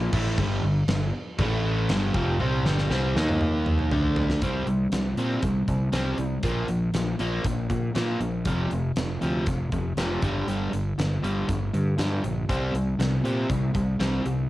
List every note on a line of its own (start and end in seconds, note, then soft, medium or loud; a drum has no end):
0.00 0.12 A#2 medium
0.00 0.12 F3 loud
0.00 0.13 A#3 loud
0.13 0.36 A1 loud
0.13 0.37 A2 medium
0.13 0.38 E3 loud
0.13 0.38 A3 loud
0.13 kick loud
0.13 crash loud
0.38 0.61 G1 medium
0.38 0.63 G2 loud
0.38 0.63 D3 loud
0.38 0.63 G3 loud
0.38 kick loud
0.38 crash medium
0.63 0.87 G1 medium
0.63 0.84 G2 medium
0.63 0.84 D3 medium
0.87 1.11 G1 medium
0.87 1.09 G2 medium
0.87 1.09 D3 medium
0.87 snare loud
0.87 crash medium
1.39 1.86 A1 medium
1.39 1.89 A2 medium
1.39 1.89 E3 medium
1.39 1.89 A3 loud
1.39 kick loud
1.39 crash medium
1.89 2.12 G1 loud
1.89 2.14 G2 medium
1.89 2.14 D3 medium
1.89 2.14 G3 loud
1.89 snare loud
1.89 crash medium
2.14 2.38 F1 loud
2.14 2.39 F2 medium
2.14 2.39 C3 loud
2.14 2.39 F3 loud
2.14 kick loud
2.39 2.63 C2 medium
2.39 2.64 C3 loud
2.39 2.65 G3 loud
2.39 2.65 C4 loud
2.39 high tom medium
2.65 2.88 G1 medium
2.65 2.89 G2 medium
2.65 2.90 D3 medium
2.65 2.90 G3 loud
2.65 snare medium
2.78 snare medium
2.90 3.13 C2 medium
2.90 3.15 C3 medium
2.90 3.15 G3 medium
2.90 3.16 C4 loud
2.90 snare medium
3.15 3.87 D#2 medium
3.15 3.91 D#3 medium
3.15 3.91 A#3 medium
3.15 3.91 D#4 medium
3.15 snare medium
3.29 mid tom medium
3.41 mid tom medium
3.66 mid tom medium
3.79 mid tom medium
3.91 4.38 D2 medium
3.91 4.41 D3 medium
3.91 4.41 A3 medium
3.91 4.42 D4 loud
3.91 floor tom loud
4.16 floor tom loud
4.30 snare medium
4.42 4.62 C2 medium
4.42 4.66 C3 medium
4.42 4.66 G3 medium
4.42 4.66 C4 medium
4.42 kick loud
4.42 closed hi-hat medium
4.67 4.87 C2 medium
4.67 4.90 C3 medium
4.67 4.90 G3 medium
4.67 closed hi-hat medium
4.92 5.12 C2 medium
4.92 5.15 C3 medium
4.92 5.15 G3 medium
4.92 snare loud
4.92 closed hi-hat medium
5.17 5.37 A#2 medium
5.17 5.41 C3 medium
5.17 5.41 G3 medium
5.17 5.41 C4 loud
5.17 closed hi-hat medium
5.42 5.63 C2 medium
5.42 5.65 C3 medium
5.42 5.65 G3 medium
5.42 kick loud
5.42 closed hi-hat medium
5.68 5.88 C2 medium
5.68 5.91 C3 medium
5.68 5.91 G3 medium
5.68 kick medium
5.68 closed hi-hat medium
5.93 6.13 C2 medium
5.93 6.16 C3 medium
5.93 6.17 G3 medium
5.93 6.17 C4 medium
5.93 snare loud
5.93 closed hi-hat medium
6.18 6.38 C2 medium
6.18 6.41 C3 medium
6.18 6.41 G3 medium
6.18 closed hi-hat medium
6.43 6.63 A#1 medium
6.43 6.67 A#2 medium
6.43 6.67 F3 medium
6.43 6.68 A#3 loud
6.43 kick loud
6.43 closed hi-hat medium
6.68 6.89 A#1 medium
6.68 6.91 A#2 medium
6.68 6.92 F3 medium
6.68 closed hi-hat medium
6.93 7.14 A#1 medium
6.93 7.17 A#2 medium
6.93 7.17 F3 medium
6.93 snare loud
6.93 closed hi-hat medium
7.19 7.40 A#1 medium
7.19 7.43 A#2 medium
7.19 7.43 F3 medium
7.19 7.44 A#3 loud
7.19 closed hi-hat medium
7.44 7.65 A#1 medium
7.44 7.67 A#2 medium
7.44 7.68 F3 medium
7.44 kick loud
7.44 closed hi-hat medium
7.70 7.93 A#2 medium
7.70 7.90 A#2 medium
7.70 7.93 F3 medium
7.70 kick medium
7.70 closed hi-hat medium
7.95 8.18 A#2 medium
7.95 8.15 A#2 medium
7.95 8.19 F3 medium
7.95 8.19 A#3 medium
7.95 snare loud
7.95 closed hi-hat medium
8.20 8.47 A#1 medium
8.20 8.43 A#2 medium
8.20 8.43 F3 medium
8.20 closed hi-hat medium
8.45 8.66 F1 medium
8.45 8.69 F2 medium
8.45 8.70 C3 medium
8.45 8.70 F3 loud
8.45 kick loud
8.45 closed hi-hat medium
8.71 8.91 F1 medium
8.71 8.94 F2 medium
8.71 8.94 C3 medium
8.71 closed hi-hat medium
8.96 9.16 F1 medium
8.96 9.19 F2 medium
8.96 9.19 C3 medium
8.96 snare loud
8.96 closed hi-hat medium
9.21 9.42 D2 medium
9.21 9.45 F2 medium
9.21 9.45 C3 medium
9.21 9.46 F3 loud
9.21 closed hi-hat medium
9.46 9.67 F1 medium
9.46 9.70 F2 medium
9.46 9.70 C3 medium
9.46 kick loud
9.46 closed hi-hat medium
9.72 9.92 F1 medium
9.72 9.95 F2 medium
9.72 9.95 C3 medium
9.72 kick medium
9.72 closed hi-hat medium
9.97 10.17 F1 medium
9.97 10.21 F2 medium
9.97 10.21 C3 medium
9.97 10.21 F3 medium
9.97 snare loud
9.97 closed hi-hat medium
10.22 10.42 G1 medium
10.22 10.46 G2 medium
10.22 10.46 D3 medium
10.22 10.47 G3 medium
10.22 kick loud
10.22 closed hi-hat medium
10.47 10.67 G1 medium
10.47 10.71 G2 medium
10.47 10.71 D3 medium
10.47 10.72 G3 medium
10.47 closed hi-hat medium
10.73 10.93 G1 medium
10.73 10.95 G2 medium
10.73 10.96 D3 medium
10.73 closed hi-hat medium
10.98 11.18 G1 medium
10.98 11.20 G2 medium
10.98 11.21 D3 medium
10.98 snare loud
10.98 closed hi-hat medium
11.23 11.43 G1 medium
11.23 11.46 G2 medium
11.23 11.47 D3 medium
11.23 11.47 G3 medium
11.23 closed hi-hat medium
11.48 11.69 G1 medium
11.48 11.71 G2 medium
11.48 11.71 D3 medium
11.48 kick loud
11.48 closed hi-hat medium
11.74 11.94 G2 medium
11.74 11.96 G2 medium
11.74 11.96 D3 medium
11.74 closed hi-hat medium
11.98 12.22 G2 medium
11.98 12.18 G2 medium
11.98 12.22 D3 medium
11.98 12.22 G3 medium
11.98 snare loud
11.98 closed hi-hat medium
12.24 12.44 A#1 medium
12.24 12.46 G2 medium
12.24 12.47 D3 medium
12.24 closed hi-hat medium
12.49 12.69 C2 medium
12.49 12.73 C3 medium
12.49 12.73 G3 medium
12.49 12.73 C4 medium
12.49 kick loud
12.49 closed hi-hat medium
12.74 12.94 C2 medium
12.74 12.97 C3 medium
12.74 12.98 G3 medium
12.74 closed hi-hat medium
12.98 13.19 C2 medium
12.98 13.22 C3 medium
12.98 13.22 G3 medium
12.98 snare loud
12.98 closed hi-hat medium
13.23 13.44 A#2 medium
13.23 13.48 C3 medium
13.23 13.49 G3 medium
13.23 13.49 C4 medium
13.23 closed hi-hat medium
13.50 13.70 C2 medium
13.50 13.72 C3 medium
13.50 13.73 G3 medium
13.50 kick loud
13.50 closed hi-hat medium
13.75 13.95 C2 medium
13.75 13.97 C3 medium
13.75 13.98 G3 medium
13.75 kick medium
13.75 closed hi-hat medium
13.99 14.20 C2 medium
13.99 14.24 C3 medium
13.99 14.24 G3 medium
13.99 14.24 C4 medium
13.99 snare loud
13.99 closed hi-hat medium
14.25 14.45 C2 medium
14.25 14.48 C3 medium
14.25 14.48 G3 medium
14.25 closed hi-hat medium